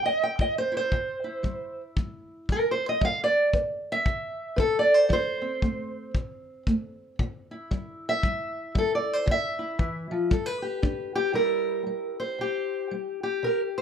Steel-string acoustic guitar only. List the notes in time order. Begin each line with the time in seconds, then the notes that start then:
Already playing: G3
0.06 D#5
0.23 G5
0.40 E4 D#5
0.58 C5
0.72 E4
0.77 C5
0.93 C3
1.24 E4
1.43 G3
1.96 G3
2.49 G3 A#4
2.71 C5
2.89 D#5
3.01 G3 F5
3.24 D5
3.54 B4
3.92 E5
4.06 D3
4.56 A4 B4
4.79 D5
4.94 C5
5.09 F3 C5
5.42 C4
5.62 A3
6.14 C3
6.67 A3
7.20 C3
7.51 E4
7.71 G3
8.09 E5
8.24 G3
8.75 G3 A4
8.95 D5
9.13 C5
9.26 C3
9.31 E5
9.59 E4
9.79 E3
10.11 F3
10.31 G3 A4
10.46 B4
10.62 G4
10.82 D4
11.15 G4
11.33 C3 G3 E4 G4 A#4
11.87 G3
12.20 C5
12.39 C3 G4
12.91 G3
13.23 G4
13.43 C3 A#4
13.78 C5